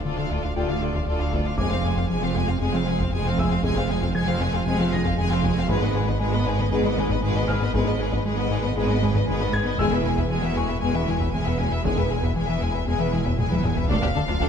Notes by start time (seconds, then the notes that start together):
Already playing: D1
0.04 D2 D3 F4 A4 D5
0.17 D3 D4 F4 F5
0.30 D2 F4 A4 D5
0.42 D2 D4 F4 F5
0.55 D2 A3 F4 G4 A4 D5 G5
0.69 D3 D4 F4 F5
0.82 D3 F4 A4 D5
0.94 D2 D4 F4 F5, taiko
1.07 D2 F4 A4 D5
1.20 D2 D4 F4 F5
1.33 D2 F4 A4 D5, taiko
1.45 D2 D4 F4 F5
1.57 F1 F2 G#3 C4 G#4 G#5 D6, taiko
1.71 F2 C4 F4 F5
1.83 F2 G#3 G#4 G#5
1.96 F2 C4 F4 F5, taiko
2.08 F1 F2 F3 G#3 G#4 G#5
2.22 F3 C4 F4 F5
2.34 F2 G#3 G#4 G#5
2.48 F2 C4 F4 F5
2.61 F1 F2 G#3 C4 G#4 G#5
2.73 F3 C4 F4 F5
2.87 F3 G#3 G#4 G#5
3.00 F2 C4 F4 F5, taiko
3.12 F1 F2 G#3 G#4 G#5
3.26 F2 C4 F4 F5
3.38 F2 G#3 G#4 E5 G#5 E6, taiko
3.51 F2 C4 F4 F5
3.63 F1 F2 G#3 C4 G#4 G#5, taiko
3.76 F2 C4 F4 F5
3.89 F2 G#3 G#4 G#5
4.02 F2 C4 F4 F5, taiko
4.15 F1 F2 F3 G#3 G#4 G#5 G#6
4.27 F3 C4 F4 F5
4.40 F2 G#3 G#4 G#5
4.53 F2 C4 F4 F5, taiko low-mid
4.66 F1 F2 G#3 C4 G#4 G#5
4.79 F3 C4 F4 F5
4.92 F3 G#3 G#4 G#5 A#6, taiko low-mid
5.05 F2 C4 F4 F5, taiko
5.17 F1 F2 G#3 G#4 G#5, taiko low-mid
5.30 F2 C4 F4 F5
5.43 F2 G#3 G#4 G#5, taiko
5.56 F2 C4 F4 F5
5.68 G#1 G#2 G#3 B3 G#4 B4, taiko
5.82 G#2 B3 B4 D#5
5.95 G#2 G#3 G#4 B4
6.07 G#2 B3 B4 D#5, taiko
6.19 G#1 G#2 G#3 G#4 B4
6.33 G#3 B3 B4 D#5
6.46 G#2 G#3 G#4 B4
6.59 G#2 B3 B4 D#5, taiko low-mid
6.71 G#1 G#2 G#3 B3 G#4 B4
6.85 G#3 B3 B4 D#5
6.98 G#3 G#4 B4, taiko low-mid
7.10 G#2 B3 B4 D#5, taiko
7.23 G#1 G#2 G#3 G#4 B4, taiko low-mid
7.36 G#2 B3 B4 D#5
7.48 G#2 G#3 G#4 B4 F6, taiko
7.62 G#2 B3 B4 D#5
7.73 G#1 G#2 G#3 B3 G#4 B4, taiko
7.87 G#2 B3 B4 D#5
8.00 G#2 G#3 G#4 B4
8.12 G#2 B3 B4 D#5, taiko
8.25 G#1 G#2 G#3 G#4 B4
8.37 G#3 B3 B4 D#5
8.50 G#2 G#3 G#4 B4
8.63 G#2 B3 B4 D#5, taiko low-mid
8.76 G#1 G#2 G#3 B3 G#4 B4
8.89 G#3 B3 B4 D#5
9.02 G#3 G#4 B4, taiko low-mid
9.14 G#2 B3 B4 D#5, taiko
9.27 G#1 G#2 G#3 G#4 B4, taiko low-mid
9.39 G#2 B3 B4 D#5
9.52 G#2 G#3 G#4 B4 G#6, taiko
9.64 G#2 B3 B4 D#5
9.77 E1 E2 G#3 B3 G#4 G#5 E6, taiko
9.90 E2 B3 B4 E5
10.03 E2 G#3 G#4 G#5
10.16 E2 B3 B4 E5, taiko
10.29 E1 E2 E3 G#3 G#4 G#5
10.41 E3 B3 B4 E5
10.54 E2 G#3 G#4 G#5 C#6
10.68 E2 B3 B4 E5, taiko low-mid
10.79 E1 E2 G#3 B3 G#4 G#5
10.93 E3 B3 B4 E5
11.06 E3 G#3 G#4 G#5, taiko low-mid
11.19 E2 B3 B4 E5, taiko
11.32 E1 E2 G#3 G#4 G#5, taiko low-mid
11.45 E2 B3 B4 E5
11.57 E2 G#3 G#4 G#5, taiko
11.69 E2 B3 B4 E5
11.83 E1 E2 G#3 B3 G#4 G#5, taiko
11.96 E2 B3 B4 E5
12.09 E2 G#3 G#4 G#5
12.22 E2 B3 B4 E5, taiko
12.35 E1 E2 E3 G#3 G#4 G#5
12.47 E3 B3 B4 E5
12.60 E2 G#3 G#4 G#5
12.73 E2 B3 B4 E5, taiko low-mid
12.87 E1 E2 G#3 B3 G#4 G#5
12.99 E3 B3 B4 E5
13.12 E3 G#3 G#4 G#5, taiko low-mid
13.25 E2 B3 B4 E5, taiko
13.37 E1 E2 G#3 G#4 G#5, taiko mid
13.50 E2 B3 B4 E5, taiko high
13.63 E2 G#3 G#4 G#5, taiko mid
13.75 E2 B3 B4 E5, taiko low
13.88 D1 D2 F3 D4 A4 F5, taiko, sub drop
14.01 D2 D4 G4
14.14 D2 D3 D4 A4
14.28 D2 D4 F4, taiko rim
14.41 D2 D4 A4, taiko